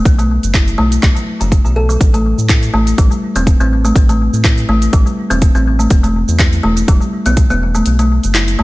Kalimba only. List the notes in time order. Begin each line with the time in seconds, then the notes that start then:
0.19 A3
0.54 E4
0.78 A3
1.02 F#3
1.40 E3
1.65 E3
1.76 A4
1.89 F#3
2.14 A3
2.49 E4
2.74 A3
2.98 G3
3.36 C4
3.60 C4
3.85 A3
4.09 A3
4.44 E4
4.69 A3
4.93 G3
5.30 C4
5.55 C4
5.79 A3
6.03 A3
6.39 E4
6.63 A3
6.88 G3
7.26 B3
7.50 B3
7.75 A3
7.99 A3
8.34 E4
8.59 A3